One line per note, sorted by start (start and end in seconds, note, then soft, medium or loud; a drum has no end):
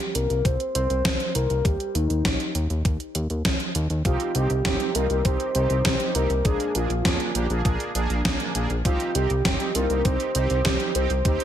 0.00 0.16 G4 loud
0.00 closed hi-hat soft
0.15 0.28 C2 medium
0.15 0.47 A#4 loud
0.15 closed hi-hat medium
0.30 0.43 C2 medium
0.30 closed hi-hat soft
0.45 0.58 C2 loud
0.45 0.74 C5 loud
0.45 kick loud
0.45 closed hi-hat medium
0.60 closed hi-hat soft
0.75 0.88 C2 medium
0.75 1.31 C5 loud
0.75 closed hi-hat loud
0.90 1.03 C2 medium
0.90 closed hi-hat soft
1.05 1.18 C2 loud
1.05 kick loud
1.05 snare loud
1.05 closed hi-hat medium
1.20 closed hi-hat soft
1.35 1.48 C2 medium
1.35 1.67 A#4 loud
1.35 closed hi-hat medium
1.50 1.63 C2 medium
1.50 closed hi-hat soft
1.65 1.78 D#2 loud
1.65 1.97 G4 loud
1.65 kick loud
1.65 closed hi-hat medium
1.80 closed hi-hat soft
1.95 2.08 D#2 loud
1.95 2.85 D#4 medium
1.95 closed hi-hat medium
2.10 2.23 D#2 medium
2.10 closed hi-hat soft
2.25 2.38 A#1 loud
2.25 kick loud
2.25 snare loud
2.25 closed hi-hat medium
2.40 closed hi-hat soft
2.55 2.68 D#2 medium
2.55 closed hi-hat medium
2.70 2.83 D#2 medium
2.70 closed hi-hat soft
2.85 2.98 D#2 loud
2.85 kick loud
2.85 closed hi-hat medium
3.00 closed hi-hat soft
3.15 3.28 D#2 medium
3.15 closed hi-hat medium
3.30 3.43 D#2 medium
3.30 closed hi-hat soft
3.45 3.58 C2 loud
3.45 kick loud
3.45 snare loud
3.45 closed hi-hat medium
3.60 closed hi-hat soft
3.75 3.88 D#2 loud
3.75 closed hi-hat medium
3.90 4.03 D#2 medium
3.90 closed hi-hat soft
4.05 4.18 C2 loud
4.05 4.32 C4 medium
4.05 4.32 D#4 medium
4.05 4.37 F4 loud
4.05 4.32 G4 loud
4.05 kick loud
4.05 closed hi-hat medium
4.20 closed hi-hat soft
4.35 4.48 C2 loud
4.35 4.51 C4 medium
4.35 4.51 D#4 medium
4.35 4.51 G4 medium
4.35 4.97 G4 loud
4.35 closed hi-hat medium
4.50 4.63 C2 medium
4.50 closed hi-hat soft
4.65 4.78 G1 loud
4.65 4.91 C4 medium
4.65 4.91 D#4 medium
4.65 4.91 G4 loud
4.65 kick loud
4.65 snare loud
4.65 closed hi-hat medium
4.80 closed hi-hat soft
4.95 5.08 C2 medium
4.95 5.07 C4 medium
4.95 5.07 D#4 medium
4.95 5.06 F4 loud
4.95 5.27 A#4 loud
4.95 closed hi-hat medium
5.10 5.23 C2 medium
5.10 5.22 C4 medium
5.10 5.22 D#4 medium
5.10 5.21 G4 medium
5.10 closed hi-hat soft
5.25 5.38 C2 loud
5.25 5.52 C4 medium
5.25 5.52 D#4 medium
5.25 5.52 G4 medium
5.25 5.55 C5 loud
5.25 kick loud
5.25 closed hi-hat medium
5.40 closed hi-hat soft
5.55 5.68 C2 medium
5.55 5.81 C4 medium
5.55 5.81 D#4 medium
5.55 5.81 G4 loud
5.55 6.17 C5 loud
5.55 closed hi-hat medium
5.70 5.83 C2 medium
5.70 closed hi-hat soft
5.85 5.98 C2 loud
5.85 6.11 C4 medium
5.85 6.11 D#4 medium
5.85 6.11 G4 loud
5.85 kick loud
5.85 snare loud
5.85 closed hi-hat medium
6.00 closed hi-hat soft
6.15 6.28 C2 medium
6.15 6.31 C4 loud
6.15 6.31 D#4 medium
6.15 6.31 G4 loud
6.15 6.47 A#4 loud
6.15 closed hi-hat medium
6.30 6.43 C2 medium
6.30 closed hi-hat soft
6.45 6.58 A#1 loud
6.45 6.71 A#3 medium
6.45 6.71 D4 medium
6.45 6.71 G#4 loud
6.45 6.77 G#4 loud
6.45 kick loud
6.45 closed hi-hat medium
6.60 closed hi-hat soft
6.75 6.88 A#1 medium
6.75 6.91 A#3 medium
6.75 6.91 D4 medium
6.75 7.65 F4 medium
6.75 6.91 G#4 medium
6.75 closed hi-hat medium
6.90 7.03 A#1 medium
6.90 closed hi-hat soft
7.05 7.18 F2 loud
7.05 7.31 A#3 medium
7.05 7.31 D4 medium
7.05 7.31 G#4 loud
7.05 kick loud
7.05 snare loud
7.05 closed hi-hat medium
7.20 closed hi-hat soft
7.35 7.48 A#1 medium
7.35 7.46 A#3 medium
7.35 7.46 D4 medium
7.35 7.46 G4 loud
7.35 closed hi-hat medium
7.50 7.63 A#1 medium
7.50 7.61 A#3 medium
7.50 7.61 D4 medium
7.50 7.61 G#4 loud
7.50 closed hi-hat soft
7.65 7.78 A#1 loud
7.65 7.91 A#3 medium
7.65 7.91 D4 medium
7.65 7.91 G#4 medium
7.65 kick loud
7.65 closed hi-hat medium
7.80 closed hi-hat soft
7.95 8.08 A#1 medium
7.95 8.21 A#3 medium
7.95 8.21 D4 medium
7.95 8.21 G#4 loud
7.95 closed hi-hat medium
8.10 8.23 A#1 medium
8.10 closed hi-hat soft
8.25 8.38 A#1 loud
8.25 8.51 A#3 medium
8.25 8.51 D4 medium
8.25 8.51 G#4 loud
8.25 kick loud
8.25 snare loud
8.25 closed hi-hat medium
8.40 closed hi-hat soft
8.55 8.68 A#1 medium
8.55 8.71 A#3 medium
8.55 8.71 D4 medium
8.55 8.71 G#4 loud
8.55 closed hi-hat medium
8.70 8.83 A#1 medium
8.70 closed hi-hat soft
8.85 8.98 C2 loud
8.85 9.12 C4 medium
8.85 9.11 D#4 medium
8.85 9.17 F4 loud
8.85 9.11 G4 loud
8.85 kick loud
8.85 closed hi-hat medium
9.00 closed hi-hat soft
9.15 9.28 C2 medium
9.15 9.31 C4 medium
9.15 9.31 D#4 medium
9.15 9.31 G4 medium
9.15 9.77 G4 loud
9.15 closed hi-hat medium
9.30 9.43 C2 medium
9.30 closed hi-hat soft
9.45 9.58 G1 loud
9.45 9.72 C4 medium
9.45 9.72 D#4 medium
9.45 9.72 G4 loud
9.45 kick loud
9.45 snare loud
9.45 closed hi-hat medium
9.60 closed hi-hat soft
9.75 9.88 C2 medium
9.75 9.87 C4 medium
9.75 9.87 D#4 medium
9.75 9.87 F4 loud
9.75 10.07 A#4 loud
9.75 closed hi-hat medium
9.90 10.03 C2 medium
9.90 10.02 C4 medium
9.90 10.02 D#4 medium
9.90 10.02 G4 medium
9.90 closed hi-hat soft
10.05 10.18 C2 loud
10.05 10.32 C4 medium
10.05 10.32 D#4 medium
10.05 10.32 G4 medium
10.05 10.67 C5 loud
10.05 kick loud
10.05 closed hi-hat medium
10.20 closed hi-hat soft
10.35 10.48 C2 medium
10.35 10.62 C4 medium
10.35 10.62 D#4 medium
10.35 10.62 G4 loud
10.35 closed hi-hat medium
10.50 10.63 C2 medium
10.50 closed hi-hat soft
10.65 10.78 C2 loud
10.65 10.92 C4 medium
10.65 10.92 D#4 medium
10.65 10.92 G4 loud
10.65 10.97 G4 loud
10.65 kick loud
10.65 snare loud
10.65 closed hi-hat medium
10.80 closed hi-hat soft
10.95 11.08 C2 medium
10.95 11.11 C4 loud
10.95 11.11 D#4 medium
10.95 11.11 G4 loud
10.95 11.44 C5 loud
10.95 closed hi-hat medium
11.10 11.23 C2 medium
11.10 closed hi-hat soft
11.25 11.38 D#2 loud
11.25 11.44 C4 medium
11.25 11.44 D#4 medium
11.25 11.44 G4 loud
11.25 kick loud
11.25 closed hi-hat medium
11.40 closed hi-hat soft